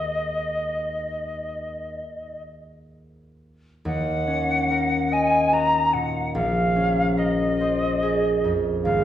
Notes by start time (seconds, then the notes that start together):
Already playing: D#2 D#4 F#4 C5 D#5
3.85 D#2 F#5
4.27 C#4
4.71 A#4
5.12 D#5 G#5
5.53 F#4 A#5
5.93 A#2 F#5
6.34 A#1 F5
6.76 C#4
7.17 A#4 D#5
7.61 C5
8.03 G#4
8.44 F2
8.83 G#1 F5